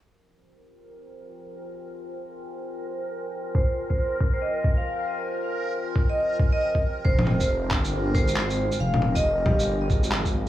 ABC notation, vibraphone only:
X:1
M:4/4
L:1/16
Q:"Swing 16ths" 1/4=137
K:Fm
V:1 name="Vibraphone"
z16 | z16 | c2 z c c z2 c e2 z f3 z2 | z6 z e2 z2 e e z3 |
c2 z c c z4 z c6 | f3 e4 z8 z |]